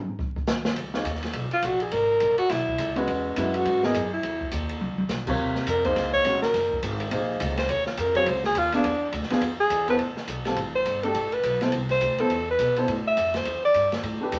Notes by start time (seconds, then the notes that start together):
0.19 kick
0.36 kick
0.47 snare, hi-hat pedal
0.65 snare
0.75 C#2, ride
0.94 A#3 D#4 G#4 C#5, snare
1.04 D#2, hi-hat pedal, ride
1.15 snare
1.23 snare, ride
1.33 B1, ride
1.51 F4, muted upright bass stroke, ride
1.62 A#1 F#4, hi-hat pedal, ride
1.80 G#4, ride
1.91 G#1 A#4, ride
2.20 A#1, hi-hat pedal, ride
2.38 F#4, muted upright bass stroke, ride
2.49 B1 E4, snare, ride
2.68 kick
2.78 C#2, hi-hat pedal, ride
2.96 G#3 C#4 F#4 B4, ride
3.07 E2, ride
3.36 F#2 G#3 C#4 E4 F#4 B4, hi-hat pedal, ride
3.54 F#4, ride
3.65 G#2, ride
3.83 B3 E4 G#4 A#4 D#5, snare
3.94 F#2, hi-hat pedal, ride
4.14 E4
4.23 E2, ride
4.41 kick
4.51 D#2, hi-hat pedal, ride
4.69 ride
4.81 C#2, high tom
4.98 high tom
5.09 B1, snare, hi-hat pedal
5.27 C3 F4 A#4 C#5, kick, crash
5.38 D#2
5.55 snare
5.66 F2 A#4, hi-hat pedal, ride
5.84 A#3 D#4 G#4 C5, kick, ride
5.96 C#2, snare, ride
6.14 C#5, kick
6.25 A#1 G#3 C#4 F#4 C#5, hi-hat pedal, ride
6.42 A#4, snare
6.54 F#1, snare, ride
6.71 kick
6.82 G#1, hi-hat pedal, ride
7.00 ride
7.11 A#1 A#3 D#4 G#4 C5, ride
7.40 C#2, hi-hat pedal, ride
7.57 C5, snare, ride
7.69 D#2 C#5, ride
7.86 F4, snare
7.97 F2 A#4, hi-hat pedal, ride
8.15 F#3 C4 F4 G#4 C#5, ride
8.26 C#2 C5, ride
8.44 G#4, snare
8.55 D#2 F4, hi-hat pedal, ride
8.72 B3 D4 F4 G#4, snare, ride
8.84 E2, ride
9.12 D2, hi-hat pedal, ride
9.23 snare
9.30 B3 D4 F4 G#4, muted upright bass stroke, snare, ride
9.41 F2, ride
9.60 G#4
9.70 E2, hi-hat pedal, ride
9.88 B3 E4 A4 B4 C5, ride
9.99 A1, ride
10.17 muted upright bass stroke, snare
10.28 B1, hi-hat pedal, ride
10.45 G3 C4 F4 A4, snare, ride
10.56 A1, ride
10.76 C5
10.85 G1, hi-hat pedal, ride
11.03 A3 D4 G4 A4, ride
11.14 A1, ride
11.32 B4, ride
11.43 B1, hi-hat pedal, ride
11.61 B3 E4 A4 C5, snare, ride
11.72 C2, ride
11.89 C5, snare, ride
12.01 D2, hi-hat pedal, ride
12.18 B3 E4 A4 C5, ride
12.30 E2, ride
12.51 B4
12.58 B2, hi-hat pedal, ride
12.76 B3 E4 A4 C5, ride
12.88 A2, ride
13.08 E5
13.17 F2, hi-hat pedal, ride
13.34 C5, snare, ride
13.45 E2, ride
13.65 D5
13.74 G2, hi-hat pedal, ride
13.92 snare, ride
14.03 A2, ride
14.21 A3 D4 G4 B4
14.32 E2, hi-hat pedal, ride